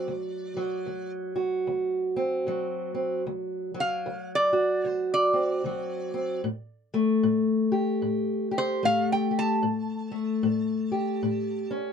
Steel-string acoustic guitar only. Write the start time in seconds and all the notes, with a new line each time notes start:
Already playing: F#3 C4 F#4
0.08 D2
0.57 F#3
0.86 D2
1.36 F#4
1.67 D2
2.16 C4
2.47 D2 F#3
2.95 C4
3.27 D2
3.74 F#3
4.06 D2
4.53 F#4
4.85 D2
5.33 C4
5.64 D2 F#3
6.14 C4
6.44 A2
6.94 A3
7.23 A2
7.72 G4
8.02 A2
8.51 G4
8.83 A2 A3
9.31 G4
9.63 A2
10.12 A3
10.43 A2
10.92 G4
11.23 A2
11.71 C#4